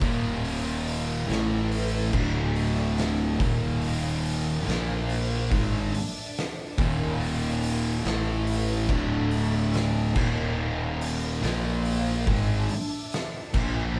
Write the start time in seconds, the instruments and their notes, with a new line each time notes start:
0.00 fingered electric bass D#1, distorted electric guitar D#2 A#2 D#3, string machine D#4 A#4 F5, kick, open hi-hat
0.44 open hi-hat
0.87 open hi-hat
1.28 fingered electric bass A1, distorted electric guitar A2 E3 A3, string machine A3 E4 B4, open hi-hat
1.32 snare
1.72 open hi-hat
2.12 fingered electric bass D1, distorted electric guitar D2 A2 D3, string machine D4 A4 E5, kick, crash
2.55 open hi-hat
2.97 snare, open hi-hat
3.39 fingered electric bass D#1, distorted electric guitar D#2 A#2 D#3, string machine D#4 A#4 F5, kick, open hi-hat
3.81 open hi-hat
4.25 open hi-hat
4.66 fingered electric bass A#1, distorted electric guitar A#2 F3 A#3, string machine A#3 F4 C5, snare, open hi-hat
5.09 open hi-hat
5.50 fingered electric bass G#1, distorted electric guitar G#2 D#3 G#3, string machine D4 E5 A5, kick, open hi-hat
5.94 open hi-hat
6.36 snare, open hi-hat
6.76 fingered electric bass D#1, distorted electric guitar D#2 A#2 D#3, string machine D#4 A#4 F5, kick, open hi-hat
7.20 open hi-hat
7.63 open hi-hat
8.04 fingered electric bass A1, distorted electric guitar A2 E3 A3, string machine A3 E4 B4, snare, open hi-hat
8.47 open hi-hat
8.89 fingered electric bass D1, distorted electric guitar D2 A2 D3, string machine D4 A4 E5, kick, crash
9.31 open hi-hat
9.73 snare, open hi-hat
10.14 fingered electric bass D#1, distorted electric guitar D#2 A#2 D#3, string machine D#4 A#4 F5, kick, crash
11.01 open hi-hat
11.41 fingered electric bass A#1, distorted electric guitar A#2 F3 A#3, string machine A#3 F4 C5, snare, open hi-hat
11.85 open hi-hat
12.27 fingered electric bass G#1, distorted electric guitar G#2 D#3 G#3, string machine D4 E5 A5, kick, open hi-hat
12.69 open hi-hat
13.12 snare, open hi-hat
13.53 fingered electric bass A#1, distorted electric guitar A#2 F3 A#3, string machine A#3 F4 C5, kick, crash